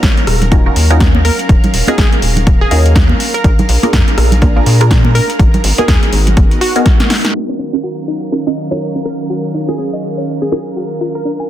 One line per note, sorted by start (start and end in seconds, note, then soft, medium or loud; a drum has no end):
0.00 0.12 A#1 medium
0.00 3.16 F#3 medium
0.00 0.49 C#4 medium
0.00 3.16 C#4 medium
0.00 0.49 D#4 medium
0.00 0.49 F4 medium
0.00 0.49 F#4 medium
0.00 0.49 A#4 medium
0.00 3.16 A#4 medium
0.00 7.33 A#4 medium
0.00 5.36 F5 medium
0.00 7.33 A#5 medium
0.00 kick loud
0.00 snare loud
0.00 closed hi-hat medium
0.17 closed hi-hat soft
0.27 0.70 D#1 medium
0.27 cross-stick medium
0.27 open hi-hat medium
0.42 closed hi-hat soft
0.42 low conga medium
0.51 0.64 C#4 medium
0.51 0.64 D#4 medium
0.51 0.64 F4 medium
0.51 0.64 F#4 medium
0.51 0.64 A#4 medium
0.51 kick loud
0.51 closed hi-hat medium
0.51 high conga medium
0.66 0.87 C#4 medium
0.66 0.87 D#4 medium
0.66 0.87 F4 medium
0.66 0.87 F#4 medium
0.66 0.87 A#4 medium
0.76 1.30 D#2 medium
0.76 open hi-hat loud
0.90 1.02 C#4 loud
0.90 1.02 D#4 medium
0.90 1.02 F4 medium
0.90 1.02 F#4 medium
0.90 1.02 A#4 loud
0.90 closed hi-hat soft
1.00 kick loud
1.00 snare loud
1.00 closed hi-hat medium
1.15 high conga medium
1.25 1.38 A#4 medium
1.25 open hi-hat medium
1.39 closed hi-hat soft
1.49 1.58 D#1 loud
1.49 kick loud
1.49 closed hi-hat medium
1.64 closed hi-hat soft
1.64 low conga medium
1.74 1.82 D#1 medium
1.74 open hi-hat medium
1.87 2.00 C#4 medium
1.87 2.00 D#4 medium
1.87 2.00 F4 medium
1.87 2.00 F#4 medium
1.87 1.94 G#4 medium
1.87 2.00 A#4 medium
1.87 closed hi-hat medium
1.87 high conga medium
1.98 2.07 A#1 medium
1.98 2.07 G#4 medium
1.98 kick loud
1.98 snare loud
1.98 closed hi-hat medium
2.12 closed hi-hat soft
2.22 2.65 D#1 medium
2.22 open hi-hat medium
2.36 closed hi-hat medium
2.36 low conga medium
2.47 kick loud
2.47 closed hi-hat medium
2.47 high conga medium
2.61 2.68 G#4 medium
2.71 3.14 D#2 medium
2.71 3.19 C#4 medium
2.71 3.19 D#4 medium
2.71 3.19 F4 medium
2.71 3.19 F#4 medium
2.71 2.80 G#4 medium
2.71 3.19 A#4 loud
2.71 open hi-hat loud
2.86 closed hi-hat soft
2.96 kick medium
2.96 snare loud
2.96 closed hi-hat medium
3.09 high conga medium
3.20 5.37 D4 medium
3.20 5.37 G#4 medium
3.20 7.31 A#4 medium
3.20 open hi-hat medium
3.34 3.69 A#4 medium
3.34 closed hi-hat soft
3.44 3.53 A#1 loud
3.44 kick loud
3.44 closed hi-hat medium
3.59 closed hi-hat soft
3.59 low conga medium
3.69 3.78 A#1 medium
3.69 open hi-hat loud
3.83 4.39 A#3 medium
3.83 4.40 D4 medium
3.83 4.40 F4 medium
3.83 4.40 G#4 medium
3.83 4.40 A#4 medium
3.83 closed hi-hat medium
3.83 high conga medium
3.93 4.02 F2 medium
3.93 kick medium
3.93 snare loud
3.93 closed hi-hat medium
4.08 closed hi-hat soft
4.18 4.60 A#1 medium
4.18 cross-stick medium
4.18 open hi-hat medium
4.32 closed hi-hat medium
4.32 low conga medium
4.42 4.54 A#3 medium
4.42 4.54 D4 medium
4.42 4.54 F4 medium
4.42 4.54 G#4 medium
4.42 4.54 A#4 medium
4.42 kick loud
4.42 closed hi-hat medium
4.42 high conga medium
4.56 4.77 A#3 medium
4.56 4.77 D4 medium
4.56 4.77 F4 medium
4.56 4.77 G#4 medium
4.56 4.77 A#4 medium
4.66 5.20 A#2 medium
4.66 open hi-hat loud
4.81 4.92 A#3 loud
4.81 4.92 D4 loud
4.81 4.92 F4 medium
4.81 4.93 G#4 medium
4.81 4.93 A#4 loud
4.81 closed hi-hat medium
4.91 kick medium
4.91 snare loud
4.91 closed hi-hat medium
5.05 high conga loud
5.15 5.28 A#4 medium
5.15 open hi-hat medium
5.30 closed hi-hat medium
5.39 5.48 G#1 loud
5.39 7.33 B3 medium
5.39 7.33 D#4 medium
5.39 7.33 F#4 medium
5.39 kick loud
5.39 closed hi-hat medium
5.54 closed hi-hat soft
5.54 low conga medium
5.64 5.73 G#1 loud
5.64 open hi-hat loud
5.78 5.90 B3 medium
5.78 5.90 D#4 medium
5.78 5.90 F#4 medium
5.78 5.85 G#4 medium
5.78 5.90 G#4 medium
5.78 5.90 A#4 medium
5.78 closed hi-hat medium
5.78 high conga medium
5.88 5.97 D#2 medium
5.88 5.98 G#4 medium
5.88 kick loud
5.88 snare loud
5.88 closed hi-hat medium
6.03 closed hi-hat soft
6.13 6.36 G#1 medium
6.13 open hi-hat medium
6.27 closed hi-hat medium
6.27 low conga medium
6.37 6.46 F#1 medium
6.37 kick loud
6.37 closed hi-hat medium
6.37 high conga medium
6.51 closed hi-hat soft
6.61 7.00 F#4 loud
6.61 open hi-hat loud
6.76 6.87 B3 medium
6.76 6.88 D#4 medium
6.76 6.88 F#4 medium
6.76 6.88 G#4 medium
6.76 6.88 A#4 loud
6.76 closed hi-hat medium
6.86 kick loud
6.86 snare medium
6.86 closed hi-hat medium
7.00 snare medium
7.00 closed hi-hat soft
7.00 high conga medium
7.10 snare medium
7.10 open hi-hat medium
7.25 snare medium
7.25 closed hi-hat medium
7.34 10.97 D#3 medium
7.34 10.97 F#3 medium
7.34 10.97 C#4 medium
7.34 11.50 A#4 medium
7.34 11.50 F5 medium
7.34 11.50 A#5 medium
7.34 crash medium
7.49 7.55 C#4 medium
7.59 7.67 C#4 medium
7.59 open hi-hat loud
7.73 8.30 C#4 medium
7.73 8.30 D#4 medium
7.73 8.30 F4 medium
7.73 8.30 F#4 medium
7.73 8.30 A#4 medium
7.83 7.88 F#4 medium
8.08 8.16 D#4 medium
8.08 open hi-hat medium
8.32 8.44 C#4 medium
8.32 8.37 C#4 medium
8.32 8.44 D#4 medium
8.32 8.44 F4 medium
8.32 8.45 F#4 medium
8.32 8.45 A#4 medium
8.46 8.68 C#4 medium
8.46 8.68 D#4 medium
8.46 8.68 F4 medium
8.46 8.68 F#4 medium
8.46 8.68 A#4 medium
8.46 8.52 D#5 medium
8.57 open hi-hat medium
8.71 8.83 C#4 loud
8.71 8.83 D#4 medium
8.71 8.83 F4 medium
8.71 8.83 F#4 medium
8.71 8.83 A#4 loud
8.71 8.77 C#5 medium
8.95 9.01 C#4 medium
9.05 9.14 C#4 medium
9.05 9.18 A#4 medium
9.05 open hi-hat medium
9.30 9.35 F#4 medium
9.54 9.63 D#4 medium
9.54 open hi-hat loud
9.68 9.80 C#4 medium
9.68 9.80 D#4 medium
9.68 9.80 F4 medium
9.68 9.80 F#4 medium
9.68 9.75 G#4 medium
9.68 9.80 A#4 medium
9.78 9.84 C#4 medium
9.78 9.88 G#4 medium
9.93 9.99 D#5 loud
10.03 open hi-hat medium
10.18 10.23 C#5 medium
10.42 10.48 C#4 medium
10.42 10.48 G#4 medium
10.52 10.99 C#4 medium
10.52 10.60 C#4 medium
10.52 10.99 D#4 medium
10.52 10.99 F4 medium
10.52 10.99 F#4 medium
10.52 10.61 G#4 medium
10.52 10.99 A#4 medium
10.52 open hi-hat loud
10.76 10.81 F#4 medium
11.01 11.50 D4 medium
11.01 11.09 F4 medium
11.01 11.50 G#4 medium
11.01 open hi-hat medium
11.15 11.49 A#4 medium
11.25 11.30 D4 medium
11.40 11.45 G#5 medium